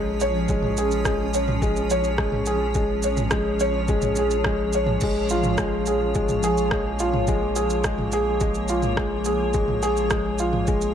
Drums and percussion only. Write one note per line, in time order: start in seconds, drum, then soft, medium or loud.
0.21 shaker medium
0.49 kick medium
0.49 shaker soft
0.62 mid tom medium
0.77 shaker medium
0.91 shaker soft
1.05 kick loud
1.05 cross-stick medium
1.05 shaker soft
1.34 shaker medium
1.48 mid tom medium
1.62 kick loud
1.62 shaker soft
1.76 shaker soft
1.90 shaker medium
2.04 shaker soft
2.18 kick loud
2.18 cross-stick medium
2.32 mid tom medium
2.46 shaker medium
2.75 kick loud
2.75 shaker soft
3.03 shaker medium
3.17 mid tom medium
3.17 shaker soft
3.31 kick medium
3.31 cross-stick loud
3.31 shaker soft
3.60 shaker medium
3.88 kick loud
3.88 shaker soft
4.02 mid tom medium
4.02 shaker soft
4.16 shaker medium
4.31 shaker soft
4.44 kick loud
4.44 cross-stick loud
4.73 shaker medium
4.87 mid tom medium
5.01 kick loud
5.01 crash medium
5.01 shaker soft
5.29 shaker medium
5.44 mid tom medium
5.44 shaker soft
5.58 kick loud
5.58 cross-stick loud
5.58 shaker soft
5.86 shaker medium
6.15 kick loud
6.15 shaker soft
6.29 mid tom medium
6.29 shaker soft
6.43 shaker medium
6.57 shaker soft
6.71 kick loud
6.71 cross-stick loud
6.99 shaker medium
7.14 mid tom medium
7.28 kick loud
7.28 shaker soft
7.56 shaker medium
7.70 shaker soft
7.84 kick loud
7.84 cross-stick loud
7.84 shaker soft
7.98 mid tom medium
8.12 shaker medium
8.41 kick loud
8.41 shaker soft
8.54 shaker soft
8.68 shaker medium
8.83 mid tom medium
8.83 shaker soft
8.97 kick loud
8.97 cross-stick loud
9.25 shaker medium
9.54 kick loud
9.54 shaker soft
9.68 mid tom medium
9.83 shaker medium
9.97 shaker soft
10.11 kick loud
10.11 cross-stick loud
10.11 shaker soft
10.39 shaker medium
10.53 mid tom medium
10.67 kick loud
10.67 shaker soft
10.81 shaker soft